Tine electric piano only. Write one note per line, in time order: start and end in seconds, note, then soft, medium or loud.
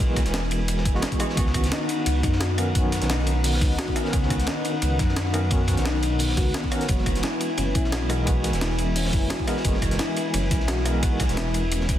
0.00 0.94 E3 loud
0.00 0.94 G#3 medium
0.00 0.95 B3 medium
0.00 0.02 F#4 medium
0.00 0.94 F#4 medium
0.00 1.39 A#4 loud
0.94 1.18 E3 medium
0.94 1.18 G#3 medium
0.94 1.18 B3 medium
0.94 1.19 F#4 loud
1.19 1.35 E3 medium
1.19 1.35 G#3 medium
1.19 1.35 B3 medium
1.19 1.36 F#4 loud
1.35 2.55 D#3 medium
1.35 2.56 B3 medium
1.35 2.56 C#4 medium
1.39 2.57 F#4 medium
2.57 2.72 D#3 loud
2.57 2.73 B3 medium
2.57 2.73 C#4 medium
2.57 2.74 A#4 loud
2.73 3.93 D#3 medium
2.73 3.94 B3 medium
2.73 3.94 C#4 medium
2.77 3.95 F#4 medium
3.95 4.10 D#3 medium
3.95 4.11 B3 medium
3.95 4.11 C#4 medium
3.95 4.12 A#4 loud
4.11 5.31 D#3 medium
4.11 5.32 B3 medium
4.11 5.32 C#4 medium
4.15 5.33 F#4 medium
5.33 5.48 D#3 medium
5.33 5.49 B3 medium
5.33 5.49 C#4 medium
5.33 5.50 A#4 loud
5.49 6.69 D#3 medium
5.49 6.69 B3 medium
5.49 6.70 C#4 medium
5.53 6.71 F#4 medium
6.71 6.87 D#3 loud
6.71 6.87 B3 medium
6.71 6.87 C#4 medium
6.71 6.88 A#4 loud
6.87 8.07 E3 medium
6.87 8.07 G#3 medium
6.87 8.08 B3 medium
6.91 8.09 F#4 medium
8.08 8.23 E3 medium
8.08 8.25 G#3 medium
8.08 8.25 B3 medium
8.08 8.26 A#4 loud
8.25 9.45 E3 medium
8.25 9.45 G#3 medium
8.25 9.46 B3 medium
8.29 9.47 F#4 medium
9.46 9.61 E3 medium
9.46 9.63 G#3 medium
9.46 9.63 B3 medium
9.46 9.63 A#4 loud
9.62 10.82 E3 medium
9.62 10.83 G#3 medium
9.62 10.84 B3 medium
9.67 10.85 F#4 medium
10.84 11.00 E3 medium
10.84 11.01 G#3 medium
10.84 11.01 B3 medium
10.84 11.01 A#4 loud
11.01 11.95 E3 medium
11.01 11.96 G#3 medium
11.01 11.97 B3 medium
11.05 11.98 F#4 medium